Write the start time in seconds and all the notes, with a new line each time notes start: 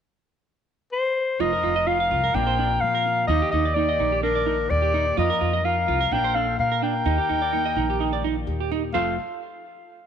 0.92 C5
1.39 F1 F2 D#4 F4 A#4 D#5
1.53 A#4
1.63 F1 F4
1.76 D#5
1.87 F4 A#4 F5, muted nylon-string guitar stroke
2.00 F5
2.11 C2 F4
2.24 A#4
2.34 A#1 A#2 F3 C4 D4 F4 A#4 G5
2.47 C5
2.59 D4
2.81 A#2 F3 A#4 F5
2.95 A#4
3.06 muted clean electric guitar stroke
3.27 D#2 D#3 A#3 D4 D#4 G4 D#5
3.42 G4
3.51 D#2 D#4 G4 D#5
3.65 D5
3.74 A#3 D#4 G4 D5
3.89 D#5
3.99 A#1 D#4
4.12 G4
4.22 D4 A#4
4.35 D5
4.46 A#2 D#4
4.69 D#2 G4 D5
4.82 G4
4.94 D#4 G4
5.17 F2 F3 A#3 D#4 F4 A#4 D#5
5.30 A#4
5.41 F2 F4
5.53 D#5
5.63 F3 F4 A#4 F5
5.88 C2 F4
6.01 A#4
6.11 A#1 A#2 D4 A#4 G5
6.24 C5
6.35 D4 A4 F5
6.58 A#2 A#4 F5, muted nylon-string guitar stroke
6.72 A#4
6.82 D4 A#4 G5
7.05 D#2 D#3 D#4 G4
7.18 G4
7.29 D#2 D#4
7.42 D5
7.53 A#3 D#4
7.65 D#5
7.76 A#1 D#4
7.90 G4
8.00 D#4
8.13 D5
8.23 A#2 D#4
8.47 D#2 G4
8.60 G4
8.71 D#4 G4
8.93 F1 F2 F3 A3 C4 F4 A4 C5 F5